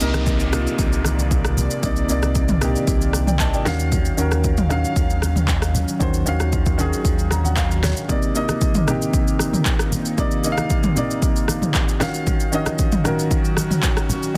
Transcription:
Already playing: C3 D#3 A#3 D5, downlifter
0.00 C2 C3 A#3 D#4 A#4, shaker
0.14 cross-stick, high conga, shaker
0.26 kick, shaker
0.40 high conga, shaker
0.52 C3 A#3 D#4 F4, cross-stick, low conga, shaker
0.67 shaker
0.79 C2, kick, shaker
0.93 shaker
1.05 cross-stick, high conga, shaker
1.18 high conga, shaker
1.31 kick, shaker
1.45 cross-stick, shaker
1.57 high conga, low conga, shaker
1.70 shaker
1.82 C2 C3 A#3 D#4 D5, kick, low conga, shaker
1.96 shaker
2.08 C2 C3 A#3 D#4 D5, shaker
2.23 cross-stick, high conga, shaker
2.35 kick, shaker
2.48 mid tom, high conga, shaker
2.60 C3 A#3 D#4 G4, cross-stick, low conga, shaker
2.76 shaker
2.87 C2, kick, shaker
3.01 shaker
3.13 cross-stick, high conga, shaker
3.27 D5 G5, mid tom, high conga, shaker
3.39 D#5 A5, kick, clap, shaker
3.54 D5 G5, shaker
3.65 D#2 D#3 F#3 C#4 F#4 F5, cross-stick, snare, high conga, low conga, shaker
3.79 shaker
3.92 kick, low conga, shaker
4.05 shaker
4.17 D#2 D#3 C#4 F#4 A#4, shaker
4.31 cross-stick, high conga, shaker
4.44 kick, shaker
4.57 mid tom, high conga, shaker
4.69 D#3 C#4 F#4 F5, cross-stick, low conga, shaker
4.85 shaker
4.96 D#2, kick, shaker
5.10 shaker
5.22 cross-stick, high conga, shaker
5.36 mid tom, high conga, shaker
5.48 kick, clap, shaker
5.62 cross-stick, shaker
5.74 F#4, high conga, low conga, shaker
5.88 shaker
5.99 D#2 D#3 C#4 F#4 C5, kick, low conga, shaker
6.14 shaker
6.26 D#2 D#3 C#4 F#4 F5, shaker
6.40 cross-stick, high conga, shaker
6.52 kick, shaker
6.66 kick, high conga, shaker
6.78 D#3 C#4 F#4 G#4, low conga, shaker
6.93 shaker
7.05 D#2, kick, shaker
7.19 shaker
7.31 A#5, cross-stick, high conga, shaker
7.44 F#5, high conga, shaker
7.57 F5, kick, clap, shaker
7.71 shaker
7.83 C#5, cross-stick, snare, high conga, low conga, shaker
7.97 shaker
8.08 C3 D#3 A#3 C4 D#4 D5, kick, low conga, shaker
8.22 shaker
8.34 C3 A#3 D#4 D#5, shaker
8.49 cross-stick, high conga, shaker
8.61 kick, shaker
8.75 mid tom, high conga, shaker
8.86 C3 A#3 D#4 G4, cross-stick, low conga, shaker
9.02 shaker
9.14 kick, shaker
9.27 shaker
9.39 cross-stick, high conga, shaker
9.53 mid tom, high conga, shaker
9.66 kick, clap, shaker
9.79 cross-stick, shaker
9.92 high conga, low conga, shaker
10.05 shaker
10.17 C3 A#3 D#4 D5, kick, low conga, shaker
10.31 shaker
10.43 C3 A#3 D#4 D#5, shaker
10.52 F5
10.58 cross-stick, high conga, shaker
10.70 kick, shaker
10.83 mid tom, high conga, shaker
10.95 C3 A#3 D#4 D5, low conga, shaker
11.11 shaker
11.22 kick, shaker
11.36 shaker
11.48 cross-stick, high conga, shaker
11.62 mid tom, high conga, shaker
11.74 kick, clap, shaker
11.88 shaker
12.00 D#3 F#3 C#4 F4 F#4 F5, cross-stick, snare, high conga, low conga, shaker
12.08 F#4
12.14 shaker
12.27 kick, low conga, shaker
12.40 shaker
12.52 D#3 C#4 F#4 D#5, shaker
12.66 cross-stick, high conga, shaker
12.79 kick, shaker
12.92 mid tom, high conga, shaker
13.04 D#3 C#4 F#4 A#4, cross-stick, low conga, shaker
13.19 shaker
13.31 kick, shaker
13.45 shaker
13.57 cross-stick, high conga, shaker
13.71 mid tom, high conga, shaker
13.83 kick, clap, shaker
13.97 cross-stick, shaker
14.09 high conga, low conga, shaker
14.23 shaker
14.34 D#3

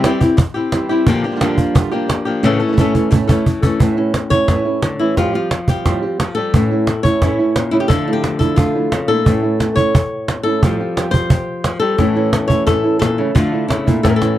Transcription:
0.04 G3 C4 E4 G4, cajon slap
0.20 C4 E4 G4, cajon bass
0.38 muted nylon-string guitar stroke, cajon bass
0.54 C4 E4 G4
0.72 E3 G3 C4 E4, cajon slap
0.89 G3 C4 E4 G4, cajon slap
1.07 A#2 D3 F3 A#3 D4 G4, muted nylon-string guitar stroke, cajon bass
1.24 F3 A#3 D4 G4
1.31 D3 G3 D4 F4
1.36 D3 G3 D4 F4
1.40 A#2 D3 F3 G3 A#3 D4 F4 G4, cajon slap
1.57 G3 D4 F4, cajon bass
1.74 A#2 D3 G3 D4 F4, muted nylon-string guitar stroke, cajon bass
1.91 F3 G3 A#3 D4 F4 G4
2.08 muted nylon-string guitar stroke, cajon slap
2.25 F3 A#3 D4 G4
2.43 A2 C#3 E3 A3 C#4 A4, muted nylon-string guitar stroke, cajon slap
2.60 E3 A3 C#4 A4
2.68 E3 A3 C#4 E4
2.72 E3 A3 C#4 E4
2.77 A2 E3 A3 C#4 E4 A4, cajon bass
2.94 A3 C#4 E4, cajon bass
3.11 A2 E3 A3 C#4 E4, muted nylon-string guitar stroke, cajon bass
3.28 E3 A3 C#4 E4 A4, cajon bass
3.46 muted nylon-string guitar stroke, cajon bass
3.62 E3 A3 C#4 A4, cajon bass
3.80 A2 E3 A3 C#4 E4, cajon bass
3.97 A3 C#4 E4
4.14 cajon slap
4.30 A3 C#4 E4 C#5, cajon bass
4.48 A2 E3 A3 C#4 E4, cajon bass, cajon slap
4.65 A3 C#4 E4
4.82 D3, muted nylon-string guitar stroke, cajon slap
4.99 E3 A3 C#4 E4
5.16 F2 A2 F3 G3 C4 F4 G4, cajon bass, cajon slap
5.33 F3 G3 C4 F4 G4
5.51 muted nylon-string guitar stroke, cajon slap
5.68 F3 G3 C4 G4, cajon bass
5.85 F2 A2 F3 G3 C4 G4, cajon bass, cajon slap
6.02 F3 G3 C4 G4
6.20 F3, muted nylon-string guitar stroke, cajon slap
6.35 F3 G3 C4 G4 A4, cajon slap
6.54 A2 E3 A3 C#4 E4, cajon bass
6.71 A3 C#4 E4
6.87 E4, muted nylon-string guitar stroke, cajon slap
7.03 A3 C#4 E4 C#5, cajon bass
7.22 A2 E3 A3 C#4 E4, cajon bass, cajon slap
7.39 A3 C#4 E4
7.56 A#2, muted nylon-string guitar stroke, cajon slap
7.71 C#3 A3 C#4 E4, cajon slap
7.80 G4
7.88 D3 F3 A3 D4 E4 F4 A4, cajon bass
8.07 A3 D4 E4
8.13 G4
8.24 muted nylon-string guitar stroke, cajon slap
8.39 A3 D4 E4 A4, cajon bass
8.56 D3 F3 A3 D4 E4 F4, cajon bass
8.75 A3 D4 E4
8.91 C#3, muted nylon-string guitar stroke, cajon slap
9.08 A#2 A3 D4 E4 A4
9.25 A2 E3 A3 C#4 E4, cajon bass
9.42 A3 C#4 E4
9.59 E3 A3 C#4 E4, cajon slap
9.76 A3 C#4 E4 C#5, cajon bass
9.93 muted nylon-string guitar stroke, cajon bass
10.28 cajon slap
10.43 A3 C#4 E4 A4
10.63 F2 A2 F3 G3 C4 G4, cajon bass
10.79 F3 G3 C4 G4
10.97 F3 G3 C4 G4, cajon slap
11.11 C4 G4 C5, cajon bass
11.15 F3 G3
11.30 G4, muted nylon-string guitar stroke, cajon bass
11.64 F3, cajon slap
11.80 G3 C4 G4 A4
11.84 F3
11.98 A2 E3 A3 C#4 E4, cajon bass, cajon slap
12.15 A3 C#4 E4
12.33 C#4, muted nylon-string guitar stroke, cajon slap
12.48 A3 C#4 E4 C#5, cajon bass
12.67 A2 E3 A3 C#4 E4 A4, cajon bass, cajon slap
12.84 A3 C#4 E4
12.99 A#2 A4, muted nylon-string guitar stroke, cajon slap
13.18 C#3 A3 C#4 E4
13.35 D3 F3 A3 D4 E4 F4, cajon bass
13.52 A3 D4 E4
13.68 C#3 E4, muted nylon-string guitar stroke, cajon slap
13.86 A#2 A3 D4 E4, cajon bass
14.03 A2 E3 A3 C#4 E4 A4, cajon bass, cajon slap
14.10 A#4
14.16 A4
14.21 A3 C#4 E4, cajon slap

